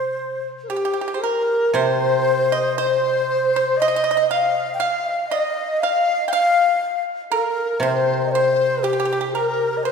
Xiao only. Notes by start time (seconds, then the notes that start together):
Already playing: C5
0.70 G4
1.22 A#4
1.75 C5
2.79 C5
3.80 D#5
4.30 F5
4.74 G5
4.80 F5
5.33 D#5
5.83 F5
6.34 F5
7.31 A#4
7.82 C5
7.87 A#4
7.95 C5
8.26 D#5
8.32 C5
8.83 G4
9.34 A#4
9.83 B4